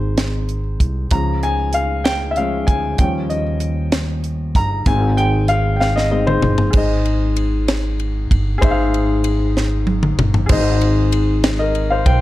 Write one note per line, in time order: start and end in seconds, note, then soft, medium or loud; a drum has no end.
0.00 0.76 G#1 loud
0.00 1.13 D#3 soft
0.00 1.12 G#3 soft
0.00 1.13 C4 medium
0.00 0.60 C5 medium
0.18 snare loud
0.18 closed hi-hat medium
0.49 closed hi-hat soft
0.80 1.09 C2 medium
0.80 kick medium
0.80 closed hi-hat medium
1.11 2.64 C#2 loud
1.11 2.01 F3 medium
1.11 2.02 G#3 soft
1.11 2.02 C#4 medium
1.11 1.44 A#5 medium
1.11 kick loud
1.11 closed hi-hat medium
1.43 1.75 G#5 medium
1.43 closed hi-hat soft
1.73 2.06 F5 medium
1.73 closed hi-hat medium
2.04 2.10 G5 medium
2.04 snare loud
2.04 closed hi-hat medium
2.31 2.37 E5 medium
2.36 2.65 F3 soft
2.36 2.66 G#3 soft
2.36 2.65 C#4 soft
2.36 2.69 F5 medium
2.36 closed hi-hat soft
2.67 2.97 D2 medium
2.67 3.00 G#5 medium
2.67 kick medium
2.67 closed hi-hat medium
2.98 4.52 D#2 medium
2.98 3.41 F3 medium
2.98 3.41 G3 soft
2.98 3.41 C#4 medium
2.98 3.31 G5 medium
2.98 kick loud
2.98 closed hi-hat medium
3.30 3.59 D#5 medium
3.30 closed hi-hat soft
3.60 closed hi-hat medium
3.92 snare loud
3.92 closed hi-hat medium
4.24 closed hi-hat soft
4.55 4.84 G1 medium
4.55 4.88 A#5 loud
4.55 kick medium
4.55 closed hi-hat medium
4.86 6.39 G#1 loud
4.86 5.28 D#3 soft
4.86 5.28 G#3 soft
4.86 5.29 C4 medium
4.86 5.19 G#5 loud
4.86 kick loud
4.86 closed hi-hat medium
5.17 5.50 G5 loud
5.17 closed hi-hat medium
5.48 5.74 F5 medium
5.48 closed hi-hat medium
5.76 5.80 G5 medium
5.80 5.97 F5 medium
5.80 snare medium
5.96 6.10 D#5 medium
5.96 snare medium
6.11 6.40 D#3 soft
6.11 6.40 G#3 soft
6.11 6.40 C4 medium
6.11 6.26 D#5 medium
6.27 6.71 C5 medium
6.27 mid tom medium
6.42 6.72 G1 medium
6.42 mid tom medium
6.58 floor tom medium
6.70 8.26 G#1 loud
6.70 7.64 G#2 medium
6.70 8.56 G#4 medium
6.70 8.58 C5 medium
6.70 kick loud
6.70 crash medium
6.77 8.60 D#5 medium
7.05 ride bell soft
7.36 ride bell medium
7.68 snare loud
7.68 ride bell medium
8.00 ride bell soft
8.31 8.60 G1 medium
8.31 kick medium
8.31 ride bell medium
8.58 10.14 G#1 loud
8.58 9.51 G#2 medium
8.58 10.44 G#4 medium
8.58 10.46 C5 medium
8.62 8.70 E5 medium
8.62 kick loud
8.62 ride bell medium
8.71 10.50 F5 medium
8.94 ride bell soft
9.24 ride bell medium
9.57 snare medium
9.87 high tom medium
10.03 mid tom medium
10.18 10.47 G1 medium
10.18 mid tom loud
10.34 floor tom medium
10.46 12.02 G#1 loud
10.46 11.39 G#2 medium
10.46 12.21 G#4 medium
10.46 11.41 C5 medium
10.46 kick loud
10.46 crash loud
10.52 11.43 D#5 medium
10.81 ride bell soft
11.12 ride bell medium
11.44 snare loud
11.44 ride bell medium
11.59 11.89 A#4 medium
11.59 11.89 D#5 medium
11.75 ride bell soft
11.90 12.05 C5 medium
11.90 12.05 F5 medium
12.06 12.21 B1 medium
12.06 12.21 C5 medium
12.06 12.21 G5 medium
12.06 kick medium
12.06 ride bell medium